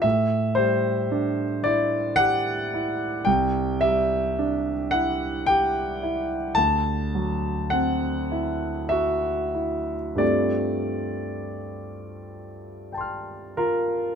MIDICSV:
0, 0, Header, 1, 2, 480
1, 0, Start_track
1, 0, Tempo, 1073345
1, 19, Time_signature, 3, 2, 24, 8
1, 1459, Tempo, 1100917
1, 2899, Tempo, 1149425
1, 3379, Tempo, 1204819
1, 3859, Tempo, 1282051
1, 4339, Tempo, 1357466
1, 5299, Tempo, 1287554
1, 5759, End_track
2, 0, Start_track
2, 0, Title_t, "Grand piano"
2, 0, Program_c, 0, 0
2, 0, Control_c, 0, 64, 127
2, 7, Note_on_c, 0, 76, 75
2, 16, Note_on_c, 0, 45, 43
2, 26, Control_c, 0, 64, 0
2, 104, Control_c, 0, 64, 127
2, 246, Note_on_c, 0, 72, 72
2, 252, Note_off_c, 0, 76, 0
2, 254, Note_on_c, 0, 55, 40
2, 498, Note_on_c, 0, 62, 40
2, 640, Note_off_c, 0, 55, 0
2, 731, Note_off_c, 0, 72, 0
2, 732, Note_on_c, 0, 74, 76
2, 741, Note_on_c, 0, 64, 41
2, 880, Note_off_c, 0, 62, 0
2, 965, Note_on_c, 0, 78, 96
2, 974, Note_off_c, 0, 74, 0
2, 977, Note_on_c, 0, 67, 43
2, 1123, Note_off_c, 0, 64, 0
2, 1226, Note_on_c, 0, 64, 40
2, 1363, Note_off_c, 0, 67, 0
2, 1440, Note_off_c, 0, 45, 0
2, 1452, Note_on_c, 0, 79, 75
2, 1454, Note_off_c, 0, 78, 0
2, 1460, Note_on_c, 0, 36, 44
2, 1464, Note_off_c, 0, 64, 0
2, 1468, Control_c, 0, 64, 0
2, 1543, Control_c, 0, 64, 127
2, 1694, Note_off_c, 0, 79, 0
2, 1696, Note_on_c, 0, 76, 80
2, 1705, Note_on_c, 0, 55, 39
2, 1948, Note_on_c, 0, 62, 39
2, 2090, Note_off_c, 0, 55, 0
2, 2177, Note_on_c, 0, 78, 83
2, 2183, Note_off_c, 0, 76, 0
2, 2187, Note_on_c, 0, 64, 39
2, 2333, Note_off_c, 0, 62, 0
2, 2419, Note_on_c, 0, 79, 87
2, 2421, Note_off_c, 0, 78, 0
2, 2431, Note_on_c, 0, 67, 42
2, 2569, Note_off_c, 0, 64, 0
2, 2666, Note_on_c, 0, 64, 40
2, 2808, Note_off_c, 0, 67, 0
2, 2883, Note_off_c, 0, 36, 0
2, 2891, Note_on_c, 0, 81, 92
2, 2897, Note_off_c, 0, 79, 0
2, 2902, Note_off_c, 0, 64, 0
2, 2902, Note_on_c, 0, 38, 42
2, 2908, Control_c, 0, 64, 0
2, 2974, Control_c, 0, 64, 127
2, 3142, Note_on_c, 0, 54, 35
2, 3374, Note_on_c, 0, 78, 72
2, 3375, Note_off_c, 0, 81, 0
2, 3384, Note_on_c, 0, 60, 37
2, 3525, Note_off_c, 0, 54, 0
2, 3619, Note_on_c, 0, 64, 40
2, 3765, Note_off_c, 0, 60, 0
2, 3847, Note_on_c, 0, 76, 75
2, 3856, Note_on_c, 0, 66, 41
2, 3857, Note_off_c, 0, 78, 0
2, 3999, Note_off_c, 0, 64, 0
2, 4093, Note_on_c, 0, 64, 33
2, 4236, Note_off_c, 0, 66, 0
2, 4321, Note_on_c, 0, 43, 37
2, 4323, Note_on_c, 0, 55, 30
2, 4325, Note_off_c, 0, 38, 0
2, 4329, Note_on_c, 0, 60, 30
2, 4331, Note_on_c, 0, 57, 30
2, 4332, Note_on_c, 0, 74, 67
2, 4334, Note_off_c, 0, 76, 0
2, 4337, Note_on_c, 0, 65, 26
2, 4340, Note_off_c, 0, 64, 0
2, 4348, Control_c, 0, 64, 0
2, 4434, Control_c, 0, 64, 127
2, 5296, Note_off_c, 0, 74, 0
2, 5302, Note_on_c, 0, 79, 28
2, 5309, Note_on_c, 0, 81, 27
2, 5321, Note_on_c, 0, 84, 27
2, 5333, Note_on_c, 0, 89, 25
2, 5540, Note_off_c, 0, 65, 0
2, 5543, Note_on_c, 0, 70, 63
2, 5546, Note_on_c, 0, 65, 46
2, 5754, Note_off_c, 0, 43, 0
2, 5755, Note_off_c, 0, 55, 0
2, 5758, Note_off_c, 0, 60, 0
2, 5759, Note_off_c, 0, 57, 0
2, 5759, Note_off_c, 0, 65, 0
2, 5759, Note_off_c, 0, 70, 0
2, 5759, Note_off_c, 0, 79, 0
2, 5759, Note_off_c, 0, 81, 0
2, 5759, Note_off_c, 0, 84, 0
2, 5759, Note_off_c, 0, 89, 0
2, 5759, End_track
0, 0, End_of_file